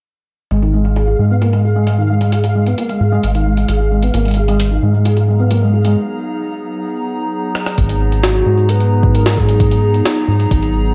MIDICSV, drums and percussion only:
0, 0, Header, 1, 2, 480
1, 0, Start_track
1, 0, Tempo, 454545
1, 535, Time_signature, 4, 2, 24, 8
1, 11557, End_track
2, 0, Start_track
2, 0, Title_t, "Drums"
2, 535, Note_on_c, 9, 42, 70
2, 641, Note_off_c, 9, 42, 0
2, 655, Note_on_c, 9, 42, 54
2, 761, Note_off_c, 9, 42, 0
2, 895, Note_on_c, 9, 42, 34
2, 1000, Note_off_c, 9, 42, 0
2, 1015, Note_on_c, 9, 42, 75
2, 1121, Note_off_c, 9, 42, 0
2, 1495, Note_on_c, 9, 42, 76
2, 1601, Note_off_c, 9, 42, 0
2, 1615, Note_on_c, 9, 42, 34
2, 1721, Note_off_c, 9, 42, 0
2, 1975, Note_on_c, 9, 42, 72
2, 2081, Note_off_c, 9, 42, 0
2, 2335, Note_on_c, 9, 42, 47
2, 2441, Note_off_c, 9, 42, 0
2, 2455, Note_on_c, 9, 42, 73
2, 2561, Note_off_c, 9, 42, 0
2, 2575, Note_on_c, 9, 42, 53
2, 2681, Note_off_c, 9, 42, 0
2, 2816, Note_on_c, 9, 42, 36
2, 2921, Note_off_c, 9, 42, 0
2, 2936, Note_on_c, 9, 42, 74
2, 3042, Note_off_c, 9, 42, 0
2, 3055, Note_on_c, 9, 42, 35
2, 3161, Note_off_c, 9, 42, 0
2, 3415, Note_on_c, 9, 42, 74
2, 3521, Note_off_c, 9, 42, 0
2, 3536, Note_on_c, 9, 42, 36
2, 3642, Note_off_c, 9, 42, 0
2, 3775, Note_on_c, 9, 42, 37
2, 3881, Note_off_c, 9, 42, 0
2, 3895, Note_on_c, 9, 42, 75
2, 4000, Note_off_c, 9, 42, 0
2, 4255, Note_on_c, 9, 42, 50
2, 4360, Note_off_c, 9, 42, 0
2, 4375, Note_on_c, 9, 42, 70
2, 4481, Note_off_c, 9, 42, 0
2, 4495, Note_on_c, 9, 42, 24
2, 4525, Note_off_c, 9, 42, 0
2, 4525, Note_on_c, 9, 42, 30
2, 4555, Note_off_c, 9, 42, 0
2, 4555, Note_on_c, 9, 42, 37
2, 4585, Note_off_c, 9, 42, 0
2, 4585, Note_on_c, 9, 42, 45
2, 4691, Note_off_c, 9, 42, 0
2, 4735, Note_on_c, 9, 42, 37
2, 4840, Note_off_c, 9, 42, 0
2, 4855, Note_on_c, 9, 42, 79
2, 4960, Note_off_c, 9, 42, 0
2, 5335, Note_on_c, 9, 42, 73
2, 5440, Note_off_c, 9, 42, 0
2, 5456, Note_on_c, 9, 42, 33
2, 5561, Note_off_c, 9, 42, 0
2, 5815, Note_on_c, 9, 42, 76
2, 5920, Note_off_c, 9, 42, 0
2, 6175, Note_on_c, 9, 42, 51
2, 6281, Note_off_c, 9, 42, 0
2, 7976, Note_on_c, 9, 37, 57
2, 8081, Note_off_c, 9, 37, 0
2, 8096, Note_on_c, 9, 37, 68
2, 8201, Note_off_c, 9, 37, 0
2, 8215, Note_on_c, 9, 42, 79
2, 8216, Note_on_c, 9, 36, 95
2, 8321, Note_off_c, 9, 36, 0
2, 8321, Note_off_c, 9, 42, 0
2, 8336, Note_on_c, 9, 42, 54
2, 8442, Note_off_c, 9, 42, 0
2, 8576, Note_on_c, 9, 42, 38
2, 8682, Note_off_c, 9, 42, 0
2, 8696, Note_on_c, 9, 38, 109
2, 8696, Note_on_c, 9, 42, 77
2, 8801, Note_off_c, 9, 38, 0
2, 8801, Note_off_c, 9, 42, 0
2, 9176, Note_on_c, 9, 42, 78
2, 9282, Note_off_c, 9, 42, 0
2, 9296, Note_on_c, 9, 42, 35
2, 9402, Note_off_c, 9, 42, 0
2, 9536, Note_on_c, 9, 36, 118
2, 9642, Note_off_c, 9, 36, 0
2, 9656, Note_on_c, 9, 42, 73
2, 9762, Note_off_c, 9, 42, 0
2, 9776, Note_on_c, 9, 38, 116
2, 9882, Note_off_c, 9, 38, 0
2, 9896, Note_on_c, 9, 36, 78
2, 10002, Note_off_c, 9, 36, 0
2, 10016, Note_on_c, 9, 42, 54
2, 10122, Note_off_c, 9, 42, 0
2, 10136, Note_on_c, 9, 36, 105
2, 10136, Note_on_c, 9, 42, 76
2, 10242, Note_off_c, 9, 36, 0
2, 10242, Note_off_c, 9, 42, 0
2, 10257, Note_on_c, 9, 42, 57
2, 10362, Note_off_c, 9, 42, 0
2, 10497, Note_on_c, 9, 42, 37
2, 10603, Note_off_c, 9, 42, 0
2, 10617, Note_on_c, 9, 38, 117
2, 10617, Note_on_c, 9, 42, 76
2, 10722, Note_off_c, 9, 38, 0
2, 10722, Note_off_c, 9, 42, 0
2, 10977, Note_on_c, 9, 42, 36
2, 11083, Note_off_c, 9, 42, 0
2, 11097, Note_on_c, 9, 36, 113
2, 11097, Note_on_c, 9, 42, 76
2, 11202, Note_off_c, 9, 36, 0
2, 11203, Note_off_c, 9, 42, 0
2, 11217, Note_on_c, 9, 42, 35
2, 11322, Note_off_c, 9, 42, 0
2, 11557, End_track
0, 0, End_of_file